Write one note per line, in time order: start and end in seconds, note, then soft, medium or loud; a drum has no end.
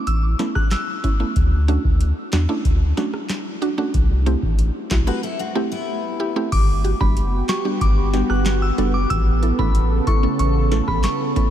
0.07 0.35 A1 loud
0.07 0.21 E6 medium
0.07 closed hi-hat medium
0.39 0.52 A3 medium
0.39 0.52 B3 medium
0.39 0.52 C#4 medium
0.39 0.52 E4 medium
0.39 snare medium
0.39 closed hi-hat medium
0.55 0.69 F#6 medium
0.55 kick medium
0.55 cross-stick medium
0.71 1.17 E6 medium
0.71 snare loud
0.71 clap medium
0.71 closed hi-hat medium
1.04 1.10 C#4 medium
1.04 1.10 E4 medium
1.04 kick medium
1.04 closed hi-hat soft
1.20 1.33 A3 medium
1.20 1.33 B3 medium
1.20 1.33 C#4 medium
1.20 1.33 E4 medium
1.36 1.78 D2 loud
1.36 kick loud
1.36 closed hi-hat medium
1.68 1.81 A3 medium
1.68 1.81 C#4 medium
1.68 1.81 D4 medium
1.68 1.81 F#4 loud
1.68 closed hi-hat soft
1.85 2.12 D2 medium
1.85 kick loud
2.01 closed hi-hat medium
2.33 2.47 E2 medium
2.33 2.39 D4 medium
2.33 2.39 F#4 loud
2.33 snare loud
2.33 clap loud
2.33 closed hi-hat medium
2.49 2.62 A3 medium
2.49 2.62 C#4 medium
2.49 2.62 D4 medium
2.49 2.62 E4 medium
2.65 2.93 D2 loud
2.65 kick loud
2.65 closed hi-hat medium
2.97 3.10 A3 medium
2.97 3.10 C#4 medium
2.97 3.10 D4 medium
2.97 3.10 F#4 loud
2.97 snare medium
2.97 closed hi-hat medium
3.14 cross-stick medium
3.29 snare loud
3.29 clap medium
3.29 closed hi-hat medium
3.62 3.68 D4 medium
3.62 3.68 F#4 loud
3.62 closed hi-hat soft
3.78 3.91 A3 medium
3.78 3.91 C#4 medium
3.78 3.91 D4 medium
3.78 3.91 F#4 medium
3.94 4.36 C2 loud
3.94 kick loud
3.94 closed hi-hat medium
4.26 4.39 A3 medium
4.26 4.39 C4 medium
4.26 4.39 E4 medium
4.26 4.39 G4 loud
4.26 closed hi-hat soft
4.43 4.70 A1 loud
4.43 kick loud
4.59 closed hi-hat medium
4.91 5.05 B1 medium
4.91 4.97 E4 medium
4.91 4.97 F#4 loud
4.91 kick medium
4.91 snare loud
4.91 clap loud
4.91 closed hi-hat medium
5.07 5.20 A3 medium
5.07 5.20 C4 medium
5.07 5.20 E4 medium
5.07 5.23 F#4 medium
5.07 5.20 G4 medium
5.07 5.22 B4 medium
5.23 5.39 E4 medium
5.23 5.39 A4 medium
5.39 5.70 C4 medium
5.39 5.70 F#4 medium
5.55 5.68 A3 medium
5.55 5.68 C4 medium
5.55 5.68 E4 medium
5.55 5.68 G4 loud
5.72 6.49 B3 medium
5.72 6.48 E4 medium
6.20 6.26 E4 medium
6.20 6.26 G4 loud
6.36 6.49 A3 medium
6.36 6.49 C4 medium
6.36 6.49 E4 medium
6.36 6.49 G4 loud
6.52 6.94 G1 loud
6.52 11.50 B3 medium
6.52 9.08 F#4 medium
6.52 9.08 G4 medium
6.52 6.80 D6 loud
6.52 kick loud
6.52 closed hi-hat medium
6.52 crash loud
6.84 6.91 F#4 medium
6.84 6.91 G4 medium
6.84 closed hi-hat soft
7.00 7.42 F#1 medium
7.00 7.13 G3 medium
7.00 7.13 B3 medium
7.00 7.14 D4 medium
7.00 7.14 F#4 medium
7.00 7.14 G4 medium
7.00 7.15 B5 medium
7.00 kick loud
7.17 closed hi-hat medium
7.49 7.55 F#4 medium
7.49 7.56 G4 medium
7.49 7.63 C#6 medium
7.49 snare loud
7.49 clap loud
7.49 closed hi-hat medium
7.65 7.78 G3 medium
7.65 7.78 B3 medium
7.65 7.78 D4 medium
7.65 7.78 F#4 medium
7.65 7.78 G4 medium
7.81 8.23 G1 loud
7.81 7.95 D6 medium
7.81 kick loud
7.81 closed hi-hat medium
8.13 8.26 G3 medium
8.13 8.26 B3 medium
8.13 8.26 D4 medium
8.13 8.27 F#4 medium
8.13 8.27 G4 medium
8.13 snare medium
8.13 closed hi-hat medium
8.30 8.71 G1 loud
8.30 8.44 F#6 medium
8.30 cross-stick medium
8.46 snare loud
8.46 clap medium
8.46 closed hi-hat medium
8.62 8.76 E6 medium
8.78 9.06 F#1 loud
8.78 8.91 G3 medium
8.78 8.91 B3 medium
8.78 8.91 D4 medium
8.78 8.91 F#4 medium
8.78 8.91 A4 medium
8.78 closed hi-hat medium
8.94 9.08 D6 medium
9.10 9.52 A1 loud
9.10 11.50 C#3 medium
9.10 11.50 A4 medium
9.10 9.38 E6 loud
9.10 kick loud
9.10 closed hi-hat medium
9.43 9.49 E4 medium
9.43 9.49 A4 medium
9.43 closed hi-hat soft
9.59 10.00 A1 medium
9.59 9.72 A3 medium
9.59 9.72 B3 medium
9.59 9.72 C#4 medium
9.59 9.72 E4 medium
9.59 9.72 A4 medium
9.59 9.73 B5 medium
9.59 kick loud
9.75 closed hi-hat medium
10.07 10.14 E4 medium
10.07 10.14 A4 medium
10.07 10.21 C#6 medium
10.07 kick medium
10.07 closed hi-hat medium
10.23 10.36 A3 medium
10.23 10.36 B3 medium
10.23 10.36 C#4 medium
10.23 10.36 E4 medium
10.23 10.36 A4 medium
10.39 10.81 A1 loud
10.39 10.53 C#6 medium
10.39 closed hi-hat medium
10.72 10.85 A3 medium
10.72 10.85 B3 medium
10.72 10.85 C#4 medium
10.72 10.85 E4 medium
10.72 10.85 A4 medium
10.72 snare medium
10.72 closed hi-hat medium
10.88 11.02 A1 medium
10.88 11.02 B5 medium
10.88 kick medium
10.88 cross-stick medium
11.04 11.49 C#6 medium
11.04 snare loud
11.04 clap medium
11.04 closed hi-hat medium
11.36 11.49 A3 medium
11.36 11.49 B3 medium
11.36 11.49 C#4 medium
11.36 11.49 E4 medium
11.36 11.49 A4 medium
11.36 kick medium
11.36 closed hi-hat medium